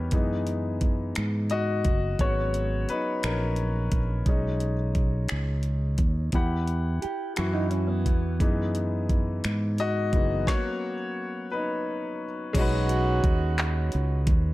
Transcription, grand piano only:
0.00 0.14 G3 soft
0.00 0.14 B3 soft
0.00 0.14 D#4 medium
0.00 0.15 E4 medium
0.00 0.14 F#4 soft
0.00 0.15 G4 medium
0.00 0.14 A#4 medium
0.00 0.14 B4 medium
0.00 0.14 C#5 medium
0.12 1.12 E3 soft
0.12 1.12 G#3 soft
0.12 1.13 B3 soft
0.12 1.13 D#4 soft
1.51 2.16 F#4 medium
1.51 2.22 D#5 medium
2.21 4.23 F#3 soft
2.21 4.23 G#3 soft
2.21 4.23 B3 soft
2.21 3.24 C#4 soft
2.21 2.86 F#4 medium
2.21 2.85 C#5 medium
2.90 2.98 D#4 medium
2.90 2.97 B4 medium
3.25 3.98 C#4 soft
3.25 3.97 A#4 medium
4.28 4.73 G#3 soft
4.28 4.73 C#4 soft
4.28 4.74 D#4 medium
6.34 7.37 E4 soft
6.34 8.37 G4 soft
6.34 8.37 F#5 soft
7.38 7.68 E3 soft
7.38 7.69 E4 soft
7.38 7.69 F#4 soft
8.40 10.12 E3 soft
8.40 10.13 G#3 soft
8.40 10.13 B3 soft
8.40 10.13 D#4 soft
9.80 10.44 F#4 medium
9.80 10.50 D#5 loud
10.14 10.44 E3 soft
10.14 10.45 G#3 soft
10.14 10.45 B3 soft
10.14 10.45 D#4 soft
10.47 10.93 F#3 soft
10.47 10.94 A#3 soft
10.47 10.94 B3 soft
10.47 10.94 C#4 soft
10.47 11.47 F#4 medium
10.47 11.47 C#5 medium
11.51 12.26 D#4 medium
11.51 12.25 B4 medium
12.53 14.54 G#3 medium
12.53 14.54 C#4 medium
12.53 14.54 D#4 medium
12.59 14.54 F#4 medium
12.59 14.54 B4 medium

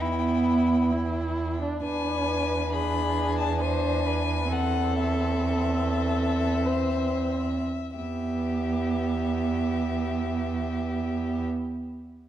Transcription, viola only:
0.02 0.93 B3 soft
0.92 1.61 E4 soft
1.62 1.84 D4 soft
1.84 2.68 D4 soft
2.72 3.59 D4 soft
3.61 4.51 D4 soft
4.54 7.63 C4 soft
7.99 11.45 B3 soft

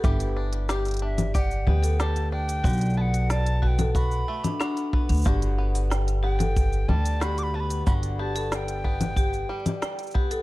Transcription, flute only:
1.03 1.33 E5 medium
1.35 1.69 F#5 medium
1.68 2.01 G5 loud
2.00 2.32 A5 medium
2.32 2.99 G5 loud
2.97 3.32 F#5 loud
2.97 3.02 A5 medium
3.30 3.63 A5 loud
3.63 3.69 A5 medium
3.67 3.94 G5 medium
3.95 4.89 B5 loud
6.24 6.90 G5 loud
6.89 7.23 A5 loud
7.22 7.40 B5 loud
7.39 7.44 D6 loud
7.43 7.57 B5 loud
7.56 7.61 A5 loud
7.60 7.85 B5 loud
7.86 7.93 B5 loud
8.19 8.52 A5 medium
8.52 10.15 G5 loud
8.52 8.56 A5 loud

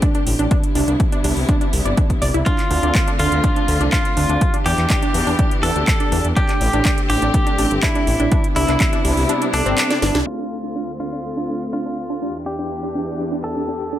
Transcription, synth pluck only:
0.02 0.10 D4 medium
0.15 0.20 D4 medium
0.39 0.47 D4 medium
0.51 0.56 D4 medium
0.75 0.84 D4 medium
0.88 0.93 D4 medium
1.12 1.20 D4 medium
1.24 1.29 D4 medium
1.49 1.57 D4 medium
1.61 1.66 D4 medium
1.85 1.97 D5 medium
1.98 2.02 D4 medium
2.22 2.34 D5 loud
2.34 2.42 E4 medium
2.46 2.54 D4 medium
2.71 2.76 D4 medium
2.83 2.91 D4 medium
3.07 3.12 D4 medium
3.19 3.27 D4 medium
3.44 3.49 D4 medium
3.56 3.64 D4 medium
3.81 3.85 D4 medium
3.93 4.01 D4 medium
4.17 4.22 D4 medium
4.29 4.37 D4 medium
4.54 4.58 D4 medium
4.66 4.74 D4 medium
4.90 4.95 D4 medium
5.03 5.10 D4 medium
5.27 5.32 D4 medium
5.39 5.47 D4 medium
5.63 5.68 D4 medium
5.76 5.83 D4 medium
6.00 6.05 D4 medium
6.12 6.20 D4 medium
6.37 6.41 D4 medium
6.49 6.57 D4 medium
6.73 6.78 D4 medium
6.85 6.93 D4 medium
7.10 7.15 D4 medium
7.22 7.30 D4 medium
7.47 7.51 D4 medium
7.59 7.67 D4 medium
7.83 7.88 D4 medium
7.95 8.03 D4 medium
8.20 8.24 D4 medium
8.32 8.40 D4 medium
8.56 8.61 D4 medium
8.69 8.76 D4 medium
8.93 8.97 D4 medium
9.05 9.13 D4 medium
9.29 9.34 D4 medium
9.42 9.49 D4 medium
9.54 9.66 A4 medium
9.66 9.74 C4 loud
9.78 9.89 D5 medium
9.90 9.98 D5 medium
10.02 10.14 D4 medium
10.15 10.20 D4 medium
10.27 10.32 D4 medium
10.39 10.47 D4 medium
10.64 10.68 D4 medium
10.76 10.84 D4 medium
11.00 11.05 D4 medium
11.13 11.20 D4 medium
11.37 11.42 D4 medium
11.49 11.57 D4 medium
11.73 11.78 D4 medium
11.86 11.93 D4 medium
12.10 12.15 D4 medium
12.22 12.30 D4 medium
12.46 12.51 D4 medium
12.59 12.66 D4 medium
12.83 12.88 D4 medium
12.95 13.03 D4 medium
13.20 13.24 D4 medium
13.32 13.40 D4 medium
13.56 13.61 D4 medium
13.68 13.76 D4 medium
13.93 13.98 D4 medium

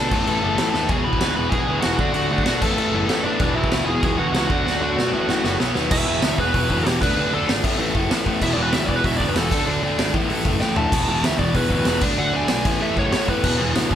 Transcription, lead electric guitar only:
0.00 0.70 A4 medium
0.00 0.69 A5 loud
0.70 0.88 A4 medium
0.70 0.88 A5 loud
0.89 1.05 G#4 medium
0.89 1.05 G#5 loud
1.04 1.35 B4 medium
1.04 1.34 B5 loud
1.36 1.51 B4 medium
1.36 1.52 B5 loud
1.50 1.81 G#4 medium
1.50 1.80 G#5 loud
1.81 2.13 F#4 medium
1.81 2.11 F#5 medium
2.13 2.45 F#4 medium
2.13 2.43 F#5 loud
2.44 2.61 F#4 medium
2.44 2.61 F#5 loud
2.61 3.22 A4 medium
2.61 3.26 A5 loud
3.23 3.54 D4 medium
3.23 3.57 D5 loud
3.55 3.86 E4 medium
3.55 3.85 E5 loud
3.86 4.17 G#4 medium
3.86 4.18 G#5 loud
4.18 4.34 F#4 medium
4.18 4.32 F#5 medium
4.33 5.56 F#4 medium
4.33 5.55 F#5 medium
5.92 6.37 E5 medium
6.40 6.88 B4 medium
6.88 7.02 G4 medium
7.02 7.32 B4 medium
7.34 7.49 A4 loud
8.43 8.53 E5 loud
8.53 8.63 D5 medium
8.62 8.73 B4 medium
8.74 8.86 E5 loud
8.86 8.95 D5 medium
8.96 9.05 B4 medium
9.06 9.15 E5 loud
9.18 9.28 D5 loud
9.28 9.37 B4 loud
9.37 9.67 A4 loud
10.61 10.77 G5 medium
10.77 11.23 A5 loud
11.25 11.39 E5 medium
11.39 11.55 D5 loud
11.55 11.70 B4 loud
11.72 12.02 B4 loud
12.19 12.34 F#5 loud
12.36 12.80 G#5 loud
12.82 12.97 E5 loud
12.99 13.12 C#5 medium
13.13 13.28 C#5 loud
13.29 13.59 B4 loud

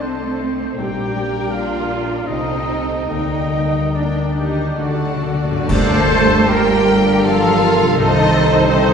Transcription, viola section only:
0.03 0.79 C4 medium
0.79 1.52 G4 medium
1.52 2.28 F4 medium
2.27 3.08 D#4 medium
3.10 3.94 D#4 medium
3.96 5.23 D4 medium
5.70 6.07 D5 medium
6.11 6.48 C5 loud
6.50 6.87 A#4 loud
6.87 7.24 A4 medium
7.25 7.99 A#4 loud
8.00 8.93 C5 loud

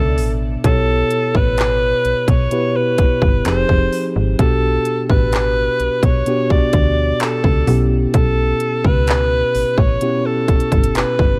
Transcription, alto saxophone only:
0.00 0.41 A4 loud
0.66 1.38 A4 loud
1.36 2.31 B4 loud
2.30 2.78 C#5 loud
2.77 3.46 B4 loud
3.47 4.12 C5 loud
4.40 5.06 A4 loud
5.11 6.06 B4 loud
6.05 6.53 C#5 loud
6.52 7.23 D5 loud
7.22 7.91 A4 loud
8.15 8.88 A4 loud
8.86 9.81 B4 loud
9.80 10.28 C#5 medium
10.27 10.96 A4 medium
10.97 11.39 B4 medium

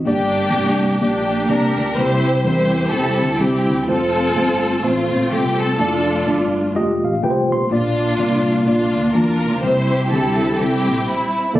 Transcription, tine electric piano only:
0.06 0.79 G2 medium
0.06 0.44 A#3 medium
0.06 0.45 D4 medium
0.06 0.45 G4 medium
0.06 0.45 D5 medium
0.53 0.92 A#3 medium
0.53 0.92 D4 medium
0.53 0.93 G4 medium
0.53 0.93 D5 medium
1.01 1.40 A#3 medium
1.01 1.40 D4 medium
1.01 1.40 G4 medium
1.01 1.41 D5 medium
1.49 1.56 A3 soft
1.49 1.88 D4 medium
1.49 1.88 G4 medium
1.49 1.88 D5 medium
1.54 1.90 A#3 medium
1.97 2.70 C3 medium
1.97 2.35 G3 medium
1.97 2.36 C4 medium
1.97 2.36 E4 medium
1.97 2.36 C5 medium
2.44 2.83 G3 medium
2.44 2.83 C4 medium
2.44 2.52 D4 soft
2.44 2.84 A#4 medium
2.51 2.86 E4 medium
2.92 3.31 G3 medium
2.92 3.31 C4 medium
2.92 3.00 D#4 medium
2.92 3.31 C5 medium
2.99 3.34 E4 medium
3.39 3.78 G3 medium
3.39 3.79 C4 medium
3.39 3.48 D4 soft
3.39 3.79 G4 medium
3.46 3.82 E4 medium
3.87 4.26 A3 medium
3.87 4.26 C4 medium
3.87 4.27 F4 medium
3.87 4.27 C5 medium
4.35 4.74 A3 medium
4.35 4.74 C4 medium
4.35 4.74 F4 medium
4.35 4.75 C5 medium
4.83 5.22 A3 medium
4.83 5.22 C4 medium
4.83 5.22 F4 medium
4.83 5.22 C5 medium
5.31 5.70 A3 medium
5.31 5.70 C4 medium
5.31 5.70 F4 medium
5.31 5.70 A4 medium
5.79 6.18 A3 medium
5.79 6.18 D4 medium
5.79 5.87 E4 soft
5.79 6.19 D5 medium
5.86 6.21 F4 medium
6.26 6.65 A3 medium
6.26 6.66 D4 medium
6.26 6.66 F4 medium
6.26 6.66 D5 medium
6.74 6.82 G#3 medium
6.74 7.13 F4 medium
6.74 7.14 G4 medium
6.74 7.14 D#5 loud
6.80 7.16 A3 medium
7.05 7.22 F5 medium
7.23 7.61 A3 medium
7.23 7.62 F4 medium
7.23 7.62 G4 medium
7.23 7.31 B4 medium
7.23 7.50 G5 medium
7.30 7.65 C5 medium
7.52 7.70 C6 medium
7.70 8.44 A#2 medium
7.70 8.09 A#3 medium
7.70 8.10 D4 medium
7.70 8.10 F4 medium
7.70 8.10 D5 medium
8.18 8.57 A#3 medium
8.18 8.57 D4 medium
8.18 8.58 F4 medium
8.18 8.58 D5 medium
8.66 9.05 A#3 medium
8.66 9.05 D4 medium
8.66 9.06 F4 medium
8.66 9.06 D5 medium
9.14 9.53 A#3 medium
9.14 9.53 D4 medium
9.14 9.54 F4 medium
9.14 9.54 A5 medium
9.63 10.36 C3 medium
9.63 10.01 G3 medium
9.63 10.01 C4 medium
9.63 10.02 E4 medium
9.63 10.02 C5 medium
10.10 10.49 G3 medium
10.10 10.49 C4 medium
10.10 10.50 E4 medium
10.10 10.50 G4 medium
10.58 10.97 G3 medium
10.58 10.97 C4 medium
10.58 10.98 E4 medium
10.58 10.98 A4 medium
11.54 11.60 C3 medium
11.54 11.60 A#3 medium
11.54 11.60 E4 medium
11.54 11.60 A4 medium
11.54 11.60 D5 loud

